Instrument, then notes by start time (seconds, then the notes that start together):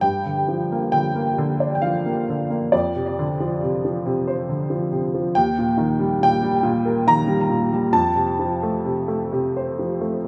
upright piano
0.01 G2 G5
0.26 D3
0.48 F3
0.72 A#3
0.92 D3 G5
1.15 A#3
1.38 D3
1.60 D5
1.75 G5
1.82 F3 F5
2.06 A#3
2.30 D3
2.50 A#3
2.72 F2 D5
2.95 C3
3.19 D3
3.40 F3
3.63 C3
3.85 F3
4.06 C3
4.28 C5
4.49 D3
4.70 F3
4.92 C3
5.14 F3
5.35 D#2 G5
5.59 A#2
5.78 D#3
5.99 G3
6.21 A#2 G5
6.43 G3
6.63 A#2
6.85 A#4
7.07 D#3 A#5
7.27 G3
7.50 A#2
7.72 G3
7.92 F2 A5
8.16 C3
8.39 F3
8.63 A3
8.85 C3
9.08 A3
9.32 C3
9.57 C5
9.79 F3
10.01 A3
10.24 C3